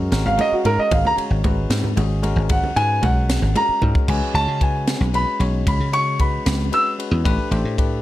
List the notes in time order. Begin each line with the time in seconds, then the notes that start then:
Already playing: C#4 F#4 A#4
0.11 G#1 G#3 C#4 F#4 A#4, snare, ride
0.26 G#1 F5, high conga, low conga
0.37 G#3 C#4 F#4 A#4, ride, muted conga
0.41 D#5
0.52 F#4, muted slap bass stroke
0.64 G#2 G#3 C#4 F#4 A#4, ride, high conga
0.78 D#5, muted slap bass stroke
0.91 G#1 F5, kick, ride, muted conga
1.05 A#5, high conga, low conga
1.16 G#3 C#4 F#4 C#5, muted slap bass stroke, ride
1.30 G#1, low conga
1.44 G#3 C#4 F#4 B4, kick, ride, muted conga, high conga
1.70 G#2, snare, ride
1.84 high conga, low conga
1.96 G#1 G#3 C#4 F#4 G#4, ride, muted conga
2.10 low conga
2.22 G#3 C#4 F#4 A#4, ride, high conga
2.36 G#1
2.49 F#5, kick, ride, muted conga, low conga
2.63 high conga, low conga
2.76 G#2 G#3 C#4 F#4 B4 G#5, ride
3.01 B1 G#3 C#4 F#4 A#4 F#5, kick, ride, muted conga, high conga
3.30 snare, ride, low conga
3.42 G#1, high conga, low conga
3.54 G#3 C#4 F#4 A#4 A#5, ride, muted conga, low conga
3.69 muted slap bass stroke
3.81 G#2 G#3 C#4 F#4 A#4, kick, high conga, low conga
3.95 muted slap bass stroke, kick, low conga
4.08 C#2 G#3 C#4 F#4 B4 G#5, kick, crash
4.33 C#2 G#3 C#4 F#4 C#5 A5, ride
4.48 C#3
4.60 G#3 C#4 F#4 B4 G#5, kick, ride
4.87 snare, ride
5.01 B1
5.13 G#3 C#4 F#4 B4 B5, ride
5.39 B1 G#3 C#4 F#4 C#5, ride
5.67 C#2 B5, kick, ride
5.80 C#3
5.92 G#3 C#4 F#4 C#5 C#6, ride
6.19 G#3 C#4 F#4 B4 B5, kick, ride
6.46 C#2, snare, ride
6.71 G#3 C#4 F#4 B4 E6, ride
6.98 G#3 C#4 F#4 B4, ride
7.11 E2
7.24 A1 A3 D4 G4 B4, kick, ride
7.51 A1 A3 D4 G4 C5, ride
7.65 A2
7.78 A3 D4 G4 B4, kick, ride